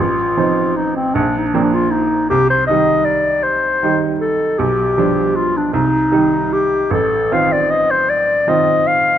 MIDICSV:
0, 0, Header, 1, 3, 480
1, 0, Start_track
1, 0, Tempo, 776197
1, 1427, Tempo, 761421
1, 1428, Time_signature, 6, 3, 24, 8
1, 3827, Tempo, 783290
1, 5706, End_track
2, 0, Start_track
2, 0, Title_t, "Clarinet"
2, 0, Program_c, 0, 71
2, 0, Note_on_c, 0, 65, 64
2, 473, Note_on_c, 0, 63, 70
2, 483, Note_off_c, 0, 65, 0
2, 591, Note_off_c, 0, 63, 0
2, 595, Note_on_c, 0, 60, 59
2, 709, Note_on_c, 0, 62, 67
2, 718, Note_off_c, 0, 60, 0
2, 853, Note_on_c, 0, 63, 50
2, 863, Note_off_c, 0, 62, 0
2, 903, Note_on_c, 0, 62, 52
2, 912, Note_off_c, 0, 63, 0
2, 955, Note_on_c, 0, 60, 50
2, 965, Note_off_c, 0, 62, 0
2, 1007, Note_on_c, 0, 62, 55
2, 1016, Note_off_c, 0, 60, 0
2, 1074, Note_on_c, 0, 65, 60
2, 1084, Note_off_c, 0, 62, 0
2, 1180, Note_on_c, 0, 63, 64
2, 1190, Note_off_c, 0, 65, 0
2, 1418, Note_off_c, 0, 63, 0
2, 1422, Note_on_c, 0, 67, 76
2, 1543, Note_off_c, 0, 67, 0
2, 1549, Note_on_c, 0, 72, 64
2, 1651, Note_off_c, 0, 72, 0
2, 1655, Note_on_c, 0, 75, 64
2, 1896, Note_on_c, 0, 74, 69
2, 1905, Note_off_c, 0, 75, 0
2, 2136, Note_on_c, 0, 72, 68
2, 2146, Note_off_c, 0, 74, 0
2, 2516, Note_off_c, 0, 72, 0
2, 2623, Note_on_c, 0, 69, 60
2, 2862, Note_on_c, 0, 67, 59
2, 2871, Note_off_c, 0, 69, 0
2, 3351, Note_on_c, 0, 65, 61
2, 3360, Note_off_c, 0, 67, 0
2, 3483, Note_on_c, 0, 62, 65
2, 3493, Note_off_c, 0, 65, 0
2, 3591, Note_off_c, 0, 62, 0
2, 3595, Note_on_c, 0, 63, 70
2, 4081, Note_on_c, 0, 67, 70
2, 4090, Note_off_c, 0, 63, 0
2, 4318, Note_off_c, 0, 67, 0
2, 4323, Note_on_c, 0, 69, 66
2, 4574, Note_on_c, 0, 77, 68
2, 4583, Note_off_c, 0, 69, 0
2, 4690, Note_on_c, 0, 74, 63
2, 4699, Note_off_c, 0, 77, 0
2, 4802, Note_on_c, 0, 75, 74
2, 4811, Note_off_c, 0, 74, 0
2, 4927, Note_on_c, 0, 72, 67
2, 4936, Note_off_c, 0, 75, 0
2, 5041, Note_on_c, 0, 74, 72
2, 5050, Note_off_c, 0, 72, 0
2, 5282, Note_on_c, 0, 75, 71
2, 5292, Note_off_c, 0, 74, 0
2, 5517, Note_on_c, 0, 77, 80
2, 5526, Note_off_c, 0, 75, 0
2, 5706, Note_off_c, 0, 77, 0
2, 5706, End_track
3, 0, Start_track
3, 0, Title_t, "Grand piano"
3, 0, Program_c, 1, 0
3, 0, Note_on_c, 1, 33, 53
3, 94, Control_c, 1, 64, 127
3, 221, Note_off_c, 1, 33, 0
3, 232, Note_on_c, 1, 53, 34
3, 232, Note_on_c, 1, 60, 41
3, 235, Note_on_c, 1, 63, 39
3, 685, Note_off_c, 1, 53, 0
3, 685, Note_off_c, 1, 60, 0
3, 687, Note_off_c, 1, 63, 0
3, 712, Note_on_c, 1, 34, 56
3, 719, Control_c, 1, 64, 0
3, 809, Control_c, 1, 64, 127
3, 944, Note_off_c, 1, 34, 0
3, 952, Note_on_c, 1, 53, 39
3, 955, Note_on_c, 1, 58, 38
3, 956, Note_on_c, 1, 62, 37
3, 1405, Note_off_c, 1, 53, 0
3, 1406, Note_off_c, 1, 58, 0
3, 1407, Note_off_c, 1, 62, 0
3, 1426, Note_on_c, 1, 36, 47
3, 1437, Control_c, 1, 64, 0
3, 1532, Control_c, 1, 64, 127
3, 1659, Note_off_c, 1, 36, 0
3, 1670, Note_on_c, 1, 51, 39
3, 1672, Note_on_c, 1, 55, 36
3, 1675, Note_on_c, 1, 63, 36
3, 2357, Note_off_c, 1, 51, 0
3, 2358, Note_off_c, 1, 55, 0
3, 2360, Note_off_c, 1, 63, 0
3, 2385, Note_on_c, 1, 51, 38
3, 2389, Note_on_c, 1, 55, 36
3, 2392, Note_on_c, 1, 63, 42
3, 2843, Note_off_c, 1, 51, 0
3, 2845, Note_off_c, 1, 55, 0
3, 2846, Note_off_c, 1, 63, 0
3, 2867, Note_on_c, 1, 35, 49
3, 2876, Control_c, 1, 64, 0
3, 2961, Control_c, 1, 64, 127
3, 3102, Note_off_c, 1, 35, 0
3, 3109, Note_on_c, 1, 55, 40
3, 3110, Note_on_c, 1, 53, 36
3, 3115, Note_on_c, 1, 62, 38
3, 3563, Note_off_c, 1, 53, 0
3, 3563, Note_off_c, 1, 55, 0
3, 3565, Note_off_c, 1, 62, 0
3, 3587, Note_on_c, 1, 36, 52
3, 3598, Control_c, 1, 64, 0
3, 3705, Control_c, 1, 64, 127
3, 3821, Note_off_c, 1, 36, 0
3, 3827, Note_on_c, 1, 51, 37
3, 3830, Note_on_c, 1, 55, 38
3, 3833, Note_on_c, 1, 63, 40
3, 4287, Note_off_c, 1, 51, 0
3, 4288, Note_off_c, 1, 55, 0
3, 4289, Note_off_c, 1, 63, 0
3, 4312, Note_on_c, 1, 33, 51
3, 4322, Control_c, 1, 64, 0
3, 4416, Control_c, 1, 64, 127
3, 4546, Note_off_c, 1, 33, 0
3, 4561, Note_on_c, 1, 51, 36
3, 4565, Note_on_c, 1, 60, 38
3, 4568, Note_on_c, 1, 65, 41
3, 5243, Note_off_c, 1, 51, 0
3, 5245, Note_off_c, 1, 60, 0
3, 5247, Note_off_c, 1, 65, 0
3, 5270, Note_on_c, 1, 51, 38
3, 5275, Note_on_c, 1, 65, 41
3, 5276, Note_on_c, 1, 60, 39
3, 5706, Note_off_c, 1, 51, 0
3, 5706, Note_off_c, 1, 60, 0
3, 5706, Note_off_c, 1, 65, 0
3, 5706, End_track
0, 0, End_of_file